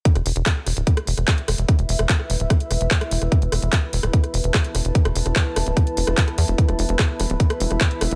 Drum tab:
HH |xxoxx-oxxxoxxxox|xxoxx-oxxxoxxxox|xxoxx-oxxxoxxxox|xxoxx-oxxxoxxxox|
CP |----x-------x---|----x-------x---|----x-------x---|----x-------x---|
SD |-r--r-r--r-r--r-|r--r-r--r-r--r-r|--r-r--r-r--r-r-|-r-r--r-r--r-r--|
BD |o---o---o---o---|o---o---o---o---|o---o---o---o---|o---o---o---o---|

HH |xxoxx-oxxxoxxxox|
CP |----x-------x---|
SD |-r--r-r--r-r--r-|
BD |o---o---o---o---|